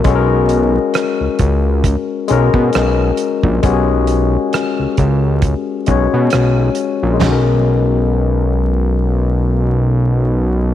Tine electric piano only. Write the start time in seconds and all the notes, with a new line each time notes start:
0.04 G#3 C#4 F#4
0.09 A4
0.15 A#4
2.28 G#3 C#4 F#4
2.33 A#4
3.62 G#3 C#4 F#4
3.67 G4
3.73 G#4
5.87 G#3 C#4 F#4
5.91 C#5
7.13 G#3
7.20 C#4
7.26 F#4
7.32 A#4